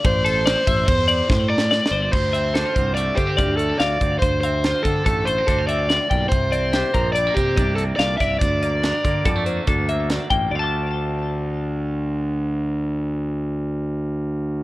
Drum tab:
CC |------------------------------|x-----------------------------|------------------------------|------------------------------|
RD |x--x--x--x--x--x--------------|------------------------------|------------------------------|------------------------------|
HH |------------------------------|---x--x--x--x--x--x--x--x--x--|x--x--x--x--x--x--x--x--x--x--|x--x--x--x--x--x--x--x--x--x--|
SD |------o-----------o---o-o-o---|------o-----------------o-----|------o-----------------o-----|------o-----------------o--o--|
BD |o--------o--o-----o-----------|o--------o-----o--o--------o--|o--------o--o-----o--------o--|o--------o-----o--o--------o--|

CC |------------------------------|------------------------------|------------------------------|
RD |------------------------------|------------------------------|------------------------------|
HH |x--x--x--x--x--x--x--x--x--x--|------------------------------|------------------------------|
SD |------o-----------------o-----|------------------------------|------------------------------|
BD |o--------o--o-----o--------o--|------------------------------|------------------------------|